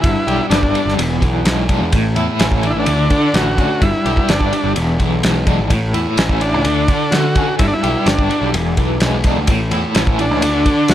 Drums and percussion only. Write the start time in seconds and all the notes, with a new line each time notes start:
0.04 kick, ride
0.28 ride
0.51 snare, ride
0.63 kick
0.75 ride
0.88 snare
0.99 ride
1.22 kick, ride
1.45 snare, ride
1.69 kick, ride
1.92 kick, ride
2.16 ride
2.39 snare, ride
2.52 kick
2.63 ride
2.86 ride
3.10 kick, ride
3.34 snare, ride
3.58 kick, ride
3.82 kick, ride
4.06 ride
4.17 kick
4.29 snare, ride
4.41 kick
4.53 ride
4.76 ride
5.00 kick, ride
5.23 snare, ride
5.47 kick, ride
5.70 kick, ride
5.94 ride
6.18 snare, ride
6.29 kick
6.41 ride
6.65 ride
6.88 kick, ride
7.12 snare, ride
7.36 kick, ride
7.59 kick, ride
7.84 ride
8.06 snare, ride
8.19 kick
8.31 ride
8.54 ride
8.77 kick, ride
9.00 snare, ride
9.24 kick, ride
9.47 kick, ride
9.71 ride
9.95 snare, ride
10.07 kick
10.19 ride
10.42 ride
10.66 kick, ride
10.88 snare, ride